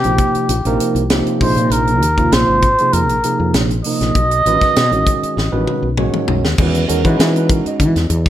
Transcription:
Already playing: G4
0.04 A#1 C3 F3 A#3 D#4 G4, closed hi-hat
0.18 kick, closed hi-hat
0.35 muted fretless electric bass stroke, closed hi-hat
0.49 A#1, closed hi-hat
0.65 A#1 C3 F3 A#3 D#4 A#4, closed hi-hat
0.80 closed hi-hat
0.95 C2, closed hi-hat
1.10 C3 F3 A#3 D#4 G4, snare, closed hi-hat
1.26 muted fretless electric bass stroke, closed hi-hat
1.40 A#1 C3 F3 A#3 D#4 G#4 C5, kick, open hi-hat
1.56 A#2, closed hi-hat
1.70 A#1 A#4, closed hi-hat
1.87 closed hi-hat
2.01 D#2, closed hi-hat
2.18 C3 F3 A#3 D#4 F4, kick, closed hi-hat
2.32 A#1 C5, snare, closed hi-hat
2.48 G#1
2.62 kick, closed hi-hat
2.78 C3 F3 A#3 D#4 G#4, closed hi-hat
2.93 F2 A#4, closed hi-hat
3.09 A#1, closed hi-hat
3.24 C3 F3 A#3 D#4 G#4, closed hi-hat
3.40 F2
3.54 A#1, snare, closed hi-hat
3.70 closed hi-hat
3.84 C3 F3 A#3 D#4 A#4 D#5, open hi-hat
4.01 A#1, snare, closed hi-hat
4.15 B1, kick, closed hi-hat
4.31 closed hi-hat
4.46 A1 D#3 G#3 C#4 F#4 B4, closed hi-hat
4.61 kick, snare, closed hi-hat
4.76 B2, snare, closed hi-hat
4.91 A1 D#3 G#3 C#4 F#4 G#4, closed hi-hat
5.07 kick, closed hi-hat
5.23 muted fretless electric bass stroke, closed hi-hat
5.37 A1, snare
5.52 A1 D#3 G#3 C#4 F#4 B4
5.67 mid tom
5.83 B1
5.97 D#3 G#3 C#4 F#4 C#5, mid tom
6.14 muted fretless electric bass stroke, mid tom
6.28 B1, floor tom
6.44 D#2, snare
6.58 E2 D#3 G#3 C#4 F#4 B4, kick, crash
6.74 closed hi-hat
6.88 E2 D#3 G#3 C#4 F#4 A#4, closed hi-hat
7.04 E3 G#3 C#4 D#4 F#4 B4, kick, closed hi-hat
7.19 E3, snare, closed hi-hat
7.36 B4, closed hi-hat
7.49 A#4, kick, closed hi-hat
7.65 D#5, muted fretless electric bass stroke, closed hi-hat
7.80 E3, kick, closed hi-hat
7.96 E2, snare, closed hi-hat
8.10 E2, closed hi-hat
8.26 kick

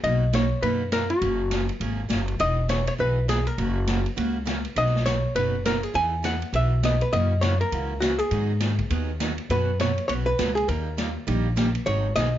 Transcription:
0.03 B1 B2 F#3 A#3 D#4 F#4 D#5, ride
0.33 B2 F#3 A#3 D#4 F#4 C#5, snare, hi-hat pedal, ride
0.62 F#2 B2 F#3 A#3 D#4 F#4 B4, ride
0.92 B2 F#3 A#3 D#4 F#4 A#4, snare, hi-hat pedal, ride
1.10 F#4, ride
1.21 F#1 F#3 A#3 C#4 G#4, ride
1.51 F#3 A#3 C#4 G#4, snare, hi-hat pedal, ride
1.69 ride
1.80 G#1 F#3 A#3 C#4 G#4, ride
2.09 F#1 F#3 A#3 C#4 G#4, snare, hi-hat pedal, ride
2.28 ride
2.39 E1 E3 B3 D#4 G#4 D#5, ride
2.69 E3 B3 D#4 G#4 C#5, snare, hi-hat pedal, ride
2.87 C#5, ride
2.98 B1 E3 B3 D#4 G#4 B4
3.28 E3 B3 D#4 G#4, snare, hi-hat pedal, ride
3.47 A#4, ride
3.58 F#1 C#3 F#3 A#3 C#4 F#4, ride
3.87 C#3 F#3 A#3 C#4 F#4, snare, hi-hat pedal, ride
4.06 ride
4.16 C#2 C#3 F#3 A#3 C#4 F#4, ride
4.46 C#3 F#3 A#3 C#4 F#4, snare, hi-hat pedal, ride
4.65 ride
4.76 B1 B2 F#3 B3 D#4 F#4 D#5, ride
4.86 snare
4.96 snare
5.06 B2 F#3 B3 D#4 F#4 C#5, snare, hi-hat pedal, ride
5.35 F#1 B2 F#3 B3 D#4 F#4 B4, ride
5.65 B2 F#3 B3 D#4 F#4 A#4, snare, hi-hat pedal, ride
5.83 G#4, ride
5.94 E2 E3 B3 D#4 G#4 G#5, ride
6.23 E3 B3 D#4 G#4 F#5, snare, hi-hat pedal, ride
6.42 ride
6.53 B1 E3 B3 D#4 G#4 E5, ride
6.83 E3 B3 D#4 G#4 D#5, snare, hi-hat pedal, ride
7.01 B4, ride
7.13 F#2 C#3 E3 A#3 C#4 F#4 D#5, ride
7.41 C#3 E3 A#3 C#4 F#4 C#5, snare, hi-hat pedal, ride
7.61 A#4, ride
7.72 C#2 C#3 E3 A#3 C#4 F#4, ride
8.00 C#3 E3 A#3 C#4 F#4, snare, hi-hat pedal, ride
8.18 G#4, ride
8.31 G#2 D#3 F#3 B3 D#4 G#4, ride
8.60 D#3 F#3 B3 D#4 G#4, snare, hi-hat pedal, ride
8.79 kick, ride
8.90 D#2 D#3 F#3 B3 D#4 G#4, ride
9.20 D#3 F#3 B3 D#4 G#4, snare, hi-hat pedal, ride
9.38 ride
9.49 F#2 B2 F#3 B3 C#4 F#4 B4, ride
9.80 B2 F#3 B3 C#4 F#4 C#5, snare, hi-hat pedal, ride
9.98 ride
10.08 B1 B2 F#3 B3 C#4 F#4 C#5, ride
10.26 B4
10.38 C#2 B2 F#3 B3 C#4 F#4, snare, hi-hat pedal, ride
10.55 G#4, ride
10.68 D#2 D#3 G3 A#3 D#4 G4 A#4, ride
10.97 D#3 G3 A#3 D#4 G4, snare, hi-hat pedal, ride
11.27 A#1 D#3 G3 A#3 D#4 G4, ride
11.56 D#3 G3 A#3 D#4 G4, snare, hi-hat pedal, ride
11.75 ride
11.86 G#1 D#3 F#3 B3 D#4 G#4 C#5, ride
12.16 B1 D#3 F#3 B3 D#4 G#4 D#5, snare, hi-hat pedal, ride

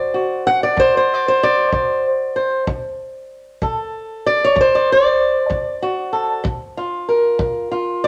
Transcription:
Already playing: D3 F#4 C5 D5
0.14 F#4
0.47 F#5
0.63 D5
0.77 D3 C5, kick
0.97 C5
1.13 D5
1.28 C5
1.43 D5
1.72 D3 D5, kick
2.36 C5
2.67 D3, kick
3.62 D3 A4, kick
4.26 D5
4.44 C#5
4.56 D3, kick
4.61 C5
4.75 D5
4.92 D5
5.50 D3, kick
5.82 F#4
6.13 A4
6.44 G2, kick
6.77 F4
7.09 A#4
7.39 G2, kick
7.71 F4
8.04 D5

